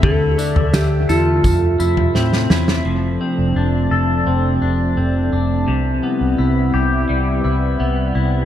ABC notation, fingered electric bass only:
X:1
M:4/4
L:1/16
Q:1/4=85
K:Flyd
V:1 name="Fingered electric bass" clef=bass
D,,2 z D,, D,,2 E,,2 F,,2 F,,2 A,,2 E,,2 | F,,,2 z F,,, F,,,2 F,,,2 F,,,2 F,,,2 F,,,2 F,,,2 | C,,2 z C,, C,,2 C,,2 C,,2 C,,2 C,,2 C,,2 |]